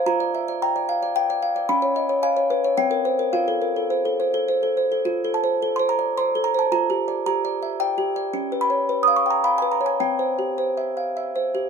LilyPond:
\new Staff \with { instrumentName = "Music box" } { \time 3/4 \key f \major \tempo 4 = 108 << { bes''4 bes''4 g''4 | ces'''4 aes''4 g''4 | f''2 r4 | r8 a''8. c'''16 bes''8 c'''8 bes''16 a''16 |
bes''4 bes''4 g''4 | r8 ces'''8. ees'''16 des'''16 bes''16 ces'''16 aes''16 bes''16 aes''16 | g''2 r4 | } \\ { f'16 d''16 e''16 d''16 g''16 d''16 f''16 d''8 d''16 f''16 d''16 | des'16 des''16 ees''16 des''16 f''16 des''16 ces''16 des''16 c'16 bes'16 c''16 bes'16 | f'16 a'16 bes'16 a'16 c''16 a'16 c''16 a'16 c''16 a'16 c''16 a'16 | \tuplet 3/2 { f'8 a'8 c''8 a'8 c''8 d''8 c''8 a'8 c''8 } |
\tuplet 3/2 { f'8 g'8 d''8 g'8 d''8 e''8 d''8 g'8 d''8 } | \tuplet 3/2 { des'8 ces''8 des''8 ces''8 f''8 g''8 f''8 ces''8 des''8 } | \tuplet 3/2 { c'8 c''8 g'8 c''8 e''8 f''8 e''8 c''8 g'8 } | } >> }